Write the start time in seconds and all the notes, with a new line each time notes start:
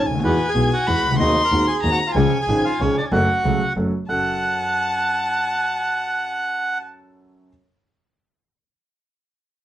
0.06 D2 G#5
0.11 C#2
0.15 D2 D#2
0.23 E2 E3 G#3 B3 F#4 B4 G#5
0.48 G#4 G#5
0.55 B1 B2 E3 G#3 B3 F#4
0.73 F#4 F#5
0.87 E2 E3 G#3 B3 F#4 B5
1.03 C2 C#2
1.12 C#2 F#4 F#5
1.16 D2 D#2 D#3 G#3 C4 C6
1.20 D#2 D#4 F#4 D#5
1.44 A#4 A#5
1.51 D#2 D#3 G#3 C4 F#4
1.68 G#4 G#5
1.83 D#2 D#3 G#3 C4 F#4 A#5
1.92 F#4 F#5
2.07 F4 F5
2.15 C#2 C#3 F3 G#3 C#4 G#4 C#5 G#5
2.40 G#4 G#5
2.47 G#1 G#2 F3 G#3 C#4 G#4
2.64 F4 F5
2.80 C#2 C#3 F3 G#3 C#4 G#4 C#5
2.97 C#5 D5
3.02 C#4 D4 C#5
3.12 F#1 F#2 F#3 A3 C#4 F#4 A4 F#5
3.44 C#2 C#3 F#3 A3 C#4 A4
3.76 F#1 F#2 F#3 A3 C#4 A4
4.09 F#1 F#2 C#4 F#4 A4 F#5 A5